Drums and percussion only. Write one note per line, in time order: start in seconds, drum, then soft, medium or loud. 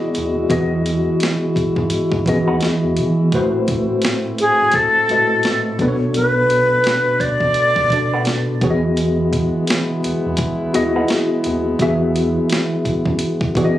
0.15 closed hi-hat medium
0.50 kick loud
0.50 closed hi-hat medium
0.86 closed hi-hat medium
1.20 snare loud
1.20 closed hi-hat medium
1.56 kick medium
1.56 closed hi-hat medium
1.76 kick medium
1.90 closed hi-hat medium
2.12 kick medium
2.26 kick medium
2.26 closed hi-hat medium
2.61 snare medium
2.61 closed hi-hat medium
2.97 closed hi-hat medium
3.32 kick loud
3.32 closed hi-hat medium
3.68 kick medium
3.68 closed hi-hat medium
4.02 snare loud
4.02 closed hi-hat medium
4.38 closed hi-hat medium
4.72 kick medium
4.72 closed hi-hat medium
5.09 closed hi-hat medium
5.43 snare loud
5.43 closed hi-hat medium
5.79 kick loud
5.79 closed hi-hat medium
6.14 closed hi-hat medium
6.50 closed hi-hat medium
6.84 snare loud
6.84 closed hi-hat medium
7.20 kick medium
7.20 closed hi-hat medium
7.40 kick medium
7.54 closed hi-hat medium
7.76 kick medium
7.90 kick medium
7.90 closed hi-hat medium
8.25 snare medium
8.25 closed hi-hat medium
8.61 kick loud
8.61 closed hi-hat medium
8.97 closed hi-hat medium
9.33 kick medium
9.33 closed hi-hat medium
9.67 snare loud
9.67 closed hi-hat medium
10.04 closed hi-hat medium
10.37 kick medium
10.37 closed hi-hat medium
10.74 closed hi-hat medium
11.08 snare loud
11.08 closed hi-hat medium
11.44 closed hi-hat medium
11.79 kick loud
11.79 closed hi-hat medium
12.16 closed hi-hat medium
12.50 snare loud
12.50 closed hi-hat medium
12.85 kick medium
12.85 closed hi-hat medium
13.06 kick medium
13.19 closed hi-hat medium
13.41 kick medium
13.55 kick medium
13.55 closed hi-hat medium